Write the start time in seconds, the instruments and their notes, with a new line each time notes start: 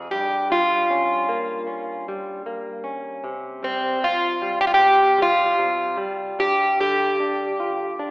0.11 nylon-string guitar G2, twelve-string acoustic guitar G4
0.50 nylon-string guitar G3, twelve-string acoustic guitar F4
0.91 nylon-string guitar C#4
1.29 nylon-string guitar A#3
1.67 nylon-string guitar C#4
2.08 nylon-string guitar G3
2.46 nylon-string guitar A#3
2.84 nylon-string guitar C#4
3.24 nylon-string guitar C3
3.63 nylon-string guitar G3, twelve-string acoustic guitar C4
4.02 nylon-string guitar C3, twelve-string acoustic guitar F4
4.42 nylon-string guitar G3
4.61 twelve-string acoustic guitar G4
4.67 twelve-string acoustic guitar F4
4.74 twelve-string acoustic guitar G4
4.79 nylon-string guitar C3
5.18 nylon-string guitar G3
5.22 twelve-string acoustic guitar F4
5.58 nylon-string guitar C3
5.97 nylon-string guitar G3
6.39 nylon-string guitar G2, twelve-string acoustic guitar G4
6.80 nylon-string guitar D3, twelve-string acoustic guitar G4
7.20 nylon-string guitar D4
7.60 nylon-string guitar F4
7.99 nylon-string guitar D4